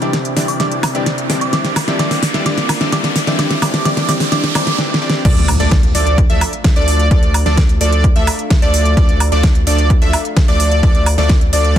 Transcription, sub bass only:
0.02 0.34 C2 medium
0.37 0.58 C2 loud
0.60 0.92 C2 loud
0.95 1.27 C2 loud
1.30 1.51 C2 loud
1.53 1.85 A#1 medium
2.00 2.32 A#1 medium
2.34 2.44 A#1 loud
2.46 2.79 A#1 loud
2.93 3.25 A#1 loud
3.27 3.37 A#1 loud
3.39 3.60 A#1 loud
3.62 3.83 A#1 loud
3.85 4.06 A#1 loud
4.09 4.30 A#1 loud
4.32 4.53 A#1 loud
4.55 4.76 A#1 medium
5.25 5.58 D2 loud
5.60 5.92 D2 loud
5.95 6.27 D2 medium
6.30 6.42 D2 loud
6.76 7.09 D2 loud
7.11 7.44 D2 loud
7.46 7.79 D2 loud
7.81 8.13 D2 medium
8.16 8.28 D2 loud
8.62 8.95 D2 loud
8.97 9.30 D2 loud
9.32 9.65 D2 loud
9.67 9.99 D2 loud
10.02 10.14 D2 medium
10.48 10.81 D2 loud
10.83 11.16 D2 loud
11.18 11.51 D2 medium
11.53 11.79 D2 loud

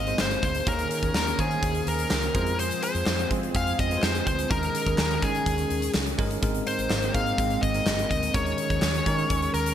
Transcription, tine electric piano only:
0.00 0.69 G#2 medium
0.00 0.07 A#3 medium
0.00 0.07 D#4 medium
0.00 0.07 G#4 medium
0.00 0.08 C5 medium
0.07 0.62 A#3 medium
0.07 0.63 D#4 medium
0.07 0.63 G#4 medium
0.07 0.63 C5 medium
0.67 1.35 D#3 medium
0.67 1.34 A#3 medium
0.67 1.34 D#4 medium
0.67 1.34 G#4 medium
0.67 1.34 C#5 medium
1.39 2.28 A#3 medium
1.39 2.28 D#4 medium
1.39 2.28 G#4 medium
1.39 2.29 C5 medium
2.35 3.24 G#3 medium
2.35 3.24 C4 medium
2.35 3.24 F4 medium
2.35 3.24 C5 medium
3.30 3.86 G#3 medium
3.30 3.87 C4 medium
3.30 3.87 F4 medium
3.30 3.87 C5 medium
3.91 4.46 G#3 medium
3.91 4.47 C4 medium
3.91 4.47 F4 medium
3.91 3.97 B4 medium
3.97 4.50 C5 medium
4.50 5.19 D#3 medium
4.50 5.18 G#3 medium
4.50 5.18 C#4 medium
4.50 5.18 D#4 medium
4.50 5.18 A#4 medium
5.22 6.12 G#3 medium
5.22 6.12 C#4 medium
5.22 6.12 D#4 medium
5.22 6.12 A#4 medium
6.18 6.41 G#3 medium
6.18 6.41 C#4 medium
6.18 6.41 D#4 medium
6.18 6.41 A#4 loud
6.42 7.11 G#2 medium
6.42 7.09 G#3 medium
6.42 7.10 C4 medium
6.42 7.10 D#4 medium
6.42 7.10 A#4 medium
7.14 7.70 G#3 medium
7.14 7.71 C4 medium
7.14 7.71 D#4 medium
7.14 7.71 G#4 medium
7.74 8.30 G#3 medium
7.74 8.31 C4 medium
7.74 8.31 D#4 medium
7.74 8.31 A#4 medium
8.35 9.03 D#3 medium
8.35 9.02 G#3 medium
8.35 9.02 C#4 medium
8.35 9.02 D#4 medium
8.35 9.02 A#4 medium
9.07 9.74 G#3 medium
9.07 9.74 C#4 medium
9.07 9.74 D#4 medium
9.07 9.74 A#4 medium

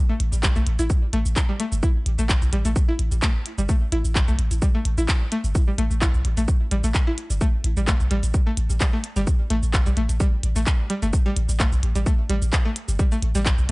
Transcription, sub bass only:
0.20 0.31 A1 loud
0.33 0.52 A1 medium
0.56 0.65 B1 medium
0.67 0.77 A1 loud
0.79 0.88 A1 medium
1.13 1.24 A1 medium
1.26 1.35 A1 loud
1.72 1.81 G1 loud
2.06 2.17 A1 loud
2.19 2.38 A1 medium
2.42 2.51 B1 medium
2.53 2.63 A1 loud
2.65 2.74 A1 medium
2.99 3.10 A1 medium
3.12 3.21 A1 loud
3.58 3.67 G1 loud
3.92 4.03 A1 loud
4.05 4.24 A1 medium
4.28 4.37 B1 medium
4.39 4.49 A1 loud
4.51 4.60 A1 medium
4.85 4.96 A1 medium
4.98 5.07 A1 loud
5.44 5.53 G1 loud
5.78 5.89 A1 loud
5.91 6.10 A1 medium
6.14 6.23 B1 medium
6.25 6.35 A1 loud
6.37 6.46 A1 medium
6.71 6.82 A1 medium
6.84 6.93 A1 loud
7.30 7.39 G1 loud
7.64 7.75 A1 loud
7.77 7.96 A1 medium
8.00 8.09 B1 medium
8.11 8.21 A1 loud
8.23 8.32 A1 loud
8.57 8.68 A1 medium
8.70 8.79 A1 loud
9.16 9.25 G1 loud
9.51 9.61 A1 loud
9.63 9.82 A1 medium
9.86 9.95 B1 medium
9.97 10.07 A1 loud
10.09 10.18 A1 medium
10.43 10.54 A1 medium
10.56 10.65 A1 loud
11.03 11.12 G1 loud
11.37 11.47 A1 loud
11.49 11.68 A1 medium
11.72 11.81 B1 medium
11.83 11.94 A1 loud
11.95 12.05 A1 medium
12.30 12.40 A1 medium
12.42 12.51 A1 loud
12.88 12.98 G1 loud
13.23 13.33 A1 medium
13.35 13.54 A1 medium
13.58 13.67 B1 medium

